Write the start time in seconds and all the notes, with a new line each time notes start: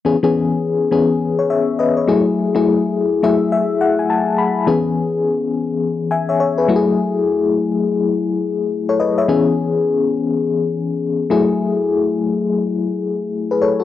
0.05 E3 B3 C#4 G#4
0.23 E3 B3 C#4 G#4
0.91 E3 B3 C#4 G#4
1.39 C#5
1.50 C#5 E5
1.79 B4 D#5
1.97 C#5
2.08 F#3 A3 E4 G#4
2.55 F#3 A3 E4 G#4
3.23 F#3 A3 E4 G#4 E5
3.52 E5
3.81 F#5
3.99 G#5
4.10 A5
4.38 B5
4.67 E3 B3 C#4 G#4
6.11 E5 G#5
6.29 C#5 E5
6.40 C#5
6.58 G#4 B4
6.68 F#3 A3 E4 F#4
6.76 G#4
8.89 A4 C#5
9.00 B4 D#5
9.18 C#5 E5
9.28 E3 B3 C#4 G#4
11.30 F#3 A3 E4 G#4
13.51 G#4 B4
13.62 A4 C#5
13.80 F#4 A4